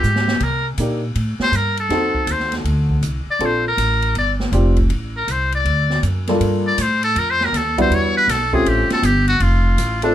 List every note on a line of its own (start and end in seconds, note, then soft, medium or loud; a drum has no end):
0.00 0.40 G#2 medium
0.00 0.45 G4 medium
0.00 hi-hat pedal soft
0.16 snare soft
0.28 snare medium
0.40 0.77 C3 medium
0.40 0.66 A#4 medium
0.40 kick medium
0.40 ride medium
0.78 1.14 A#2 medium
0.78 1.01 A#3 soft
0.78 1.01 D4 soft
0.78 1.01 D#4 soft
0.78 1.01 G4 soft
0.78 hi-hat pedal medium
0.78 ride medium
1.15 1.38 A2 medium
1.15 ride medium
1.39 1.57 C5 medium
1.39 muted upright bass stroke soft
1.39 snare medium
1.52 1.89 G2 medium
1.52 1.79 A#4 medium
1.52 hi-hat pedal soft
1.52 ride medium
1.77 2.33 A4 medium
1.77 ride soft
1.89 2.13 F2 medium
1.89 2.95 C4 medium
1.89 2.95 D#4 medium
1.89 2.95 F#4 soft
1.89 2.96 A4 medium
1.89 snare soft
1.89 ride soft
2.14 muted upright bass stroke soft
2.14 kick soft
2.27 2.63 D#2 medium
2.27 hi-hat pedal medium
2.27 ride medium
2.31 2.54 C5 medium
2.40 snare soft
2.52 snare soft
2.52 ride soft
2.64 3.01 D2 medium
2.64 ride medium
2.90 kick medium
3.01 3.25 C2 medium
3.01 hi-hat pedal medium
3.01 ride medium
3.26 muted upright bass stroke soft
3.30 3.47 D5 medium
3.39 3.76 A#1 medium
3.39 3.62 C4 medium
3.39 3.63 D4 soft
3.39 3.63 F4 medium
3.39 3.63 A4 medium
3.39 ride soft
3.45 3.67 C5 medium
3.68 4.14 A#4 medium
3.77 4.14 A1 medium
3.77 hi-hat pedal soft
3.77 ride medium
4.02 ride soft
4.15 4.52 G1 medium
4.15 4.32 D5 medium
4.15 ride medium
4.40 snare medium
4.52 4.89 F1 medium
4.52 4.75 C4 medium
4.52 4.75 D4 medium
4.52 4.75 F4 medium
4.52 4.75 G4 medium
4.52 hi-hat pedal soft
4.52 ride medium
4.77 kick medium
4.77 ride soft
4.90 5.27 A1 medium
4.90 ride soft
5.16 5.33 A#4 medium
5.27 5.64 C2 medium
5.27 5.54 C5 medium
5.27 hi-hat pedal medium
5.27 ride medium
5.52 6.01 D5 medium
5.52 ride soft
5.65 6.02 D2 medium
5.65 ride soft
5.90 snare soft
6.03 6.39 F#2 medium
6.03 hi-hat pedal soft
6.03 ride soft
6.27 6.76 G2 medium
6.27 6.76 A#3 medium
6.27 6.76 D4 medium
6.27 6.76 F4 medium
6.27 6.76 A4 medium
6.27 snare soft
6.27 ride soft
6.40 6.77 G2 medium
6.40 ride medium
6.67 6.83 D5 medium
6.78 7.14 A2 medium
6.78 7.03 C5 medium
6.78 hi-hat pedal medium
6.78 ride medium
7.03 7.20 A4 medium
7.03 ride soft
7.16 7.52 F2 medium
7.16 7.32 A#4 medium
7.16 ride medium
7.30 7.46 C5 medium
7.41 7.58 A#4 medium
7.41 snare soft
7.52 7.89 D#2 medium
7.52 snare soft
7.52 hi-hat pedal medium
7.52 ride medium
7.56 7.79 A4 medium
7.78 8.26 G3 medium
7.78 8.26 B3 medium
7.78 8.26 D4 medium
7.78 8.26 E4 medium
7.78 8.26 F#4 medium
7.78 7.95 C5 medium
7.78 kick medium
7.78 ride soft
7.90 8.27 E2 medium
7.90 8.16 C#5 medium
7.90 ride medium
8.17 8.32 B4 medium
8.28 8.64 B1 medium
8.28 8.55 A4 medium
8.28 snare soft
8.28 hi-hat pedal medium
8.28 ride medium
8.53 9.01 A3 medium
8.53 9.01 C4 medium
8.53 9.01 C#4 medium
8.53 9.01 F4 medium
8.53 9.01 G4 medium
8.53 8.70 G#4 medium
8.53 kick medium
8.65 8.88 A1 medium
8.65 8.91 G4 medium
8.65 ride medium
8.90 9.06 A4 medium
8.90 snare soft
8.90 ride soft
9.03 9.39 G1 loud
9.03 9.27 G4 medium
9.03 hi-hat pedal medium
9.03 ride medium
9.28 9.43 F#4 medium
9.28 ride soft
9.40 9.77 F1 medium
9.40 10.03 F4 medium
9.40 ride medium
9.78 10.14 A1 medium
9.78 hi-hat pedal medium
9.78 ride medium
10.02 10.15 A3 medium
10.02 10.15 C4 medium
10.02 10.15 D4 medium
10.02 10.15 F4 medium
10.02 10.15 A4 medium
10.02 ride soft